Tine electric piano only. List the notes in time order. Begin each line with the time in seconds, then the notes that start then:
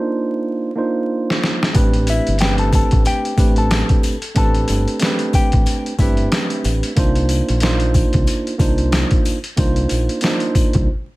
Already playing: A#3 D4 D#4 F4 C5
0.76 A#3 D4 D#4 F4 C5
1.73 A3 C4 D4 G4 B4
2.40 A3 C4 D4 G4 B4
3.37 A3 C4 D4 G4 B4
4.35 A3 C4 D4 G4 B4
4.99 A3 C4 D4 G4 B4
5.99 A3 C4 D4 G4 B4
6.96 A#3 D4 D#4 F4 C5
7.61 A#3 D4 D#4 F4 C5
8.58 A#3 D4 D#4 F4 C5
9.56 A#3 D4 D#4 F4 C5
10.22 A#3 D4 D#4 F4 C5